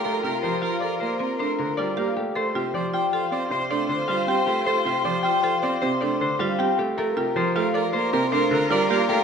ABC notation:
X:1
M:6/4
L:1/8
Q:1/4=156
K:Gm
V:1 name="Harp"
[GBcdfg] G c f d c B c B d f G | c G d g f d c d c f g G | c G d g f d c d c f g G | B G c f d c B c B d f G |]
V:2 name="Soprano saxophone"
B B B B B B B B B B B z | c c c c c c c c c c c c | c c c c c c c c c c c z | B B B B B B B B B B B B |]
V:3 name="Violin section"
[FB]8- [FB]3 z | [Fc]12- | [Fc]8- [Fc]3 z | [FB]12 |]
V:4 name="Marimba"
A F z F A z C D z F G z | A F z F A z C D z F G z | A F z F A z C D z F G z | A F z F A z C D z F G z |]
V:5 name="Grand piano"
A, C, F, z2 B, z A, D, G, B, A, | A, C, F, z2 C C, A, D, G, C A, | A, C, F, z2 C C, A, D, G, C A, | A, C, F, A, z B, C, A, D, G, B, A, |]